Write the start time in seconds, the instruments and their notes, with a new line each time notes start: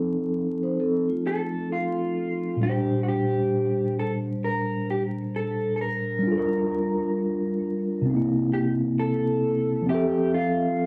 Already playing: tine electric piano F3 C4 D#4 A4
0.63 vibraphone D#4 C5
0.80 vibraphone C4 A4
1.09 vibraphone A3 F4
1.27 clean electric guitar A4
1.72 clean electric guitar F4
2.57 tine electric piano A#2
2.61 tine electric piano G3, clean electric guitar G4
2.65 tine electric piano D4
2.69 tine electric piano C5
3.03 clean electric guitar F#4
3.08 clean electric guitar G4
3.99 clean electric guitar A4
4.44 clean electric guitar A#4
4.90 clean electric guitar G4
5.36 clean electric guitar A4
5.76 clean electric guitar A4
5.81 clean electric guitar A#4
6.19 tine electric piano G3 D4
6.27 tine electric piano F4
6.31 tine electric piano A4
6.38 tine electric piano A#4
8.02 tine electric piano C3
8.06 tine electric piano C4
8.10 tine electric piano D#4
8.14 tine electric piano A#3 E4
8.53 clean electric guitar G4
8.99 clean electric guitar A4
9.82 tine electric piano F3
9.86 tine electric piano C4, clean electric guitar G4
9.90 tine electric piano E5
9.94 tine electric piano A4
10.34 clean electric guitar F4